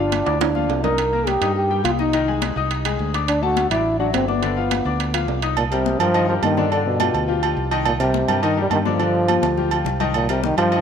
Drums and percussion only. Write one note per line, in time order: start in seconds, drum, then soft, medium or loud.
0.12 high conga loud
0.12 high timbale medium
0.27 high conga soft
0.27 high timbale medium
0.41 high conga medium
0.41 high timbale medium
0.55 high conga medium
0.70 low timbale medium
0.84 low conga medium
0.84 low timbale medium
0.98 high conga soft
0.98 high timbale medium
1.13 high conga soft
1.27 high conga medium
1.27 high timbale medium
1.42 low conga medium
1.42 high timbale medium
1.56 high conga soft
1.70 high conga soft
1.85 high conga medium
1.85 high timbale medium
1.99 high conga medium
2.13 high timbale medium
2.28 high conga soft
2.42 high conga medium
2.42 high timbale medium
2.56 high conga soft
2.71 high conga soft
2.71 high timbale medium
2.85 high conga soft
2.85 high timbale medium
3.00 high conga soft
3.14 high conga soft
3.14 high timbale medium
3.28 high conga soft
3.28 high timbale medium
3.43 high conga soft
3.57 high conga loud
3.57 high timbale medium
3.71 low conga medium
3.71 high timbale loud
3.86 high conga soft
4.00 high conga soft
4.14 high conga medium
4.14 high timbale medium
4.14 low timbale medium
4.28 high conga medium
4.43 high timbale medium
4.57 high conga soft
4.71 high conga medium
4.71 high timbale medium
4.86 high conga soft
5.00 high conga soft
5.00 high timbale medium
5.14 high conga soft
5.14 high timbale medium
5.28 high conga soft
5.28 low timbale medium
5.42 high conga soft
5.42 high timbale medium
5.57 high conga soft
5.57 low agogo loud
5.72 high conga soft
5.72 low agogo medium
5.86 high conga medium
6.00 low conga medium
6.00 low agogo loud
6.14 high conga soft
6.14 low agogo medium
6.29 high conga soft
6.43 high conga medium
6.43 low timbale medium
6.43 low agogo loud
6.57 high conga medium
6.72 high conga soft
6.72 low agogo medium
6.86 high conga soft
7.00 high conga loud
7.00 low agogo loud
7.14 high conga soft
7.14 low agogo medium
7.29 high conga soft
7.42 high conga soft
7.42 low agogo loud
7.57 high conga soft
7.71 high conga soft
7.71 low agogo medium
7.86 high conga soft
7.86 low agogo loud
8.00 high conga soft
8.00 low agogo medium
8.14 high conga loud
8.28 low conga medium
8.28 low agogo loud
8.43 high conga soft
8.43 low agogo medium
8.57 high conga soft
8.71 high conga medium
8.71 low agogo loud
8.86 high conga medium
9.00 high conga soft
9.00 low agogo medium
9.15 high conga soft
9.28 high conga medium
9.28 low agogo loud
9.43 high conga loud
9.43 low agogo medium
9.57 low conga medium
9.71 low agogo loud
9.86 low conga loud
10.00 low conga medium
10.00 low agogo medium
10.14 high conga soft
10.14 low agogo loud
10.29 low agogo medium
10.44 high conga loud
10.58 low conga medium
10.58 low agogo loud
10.72 high conga soft
10.72 low agogo medium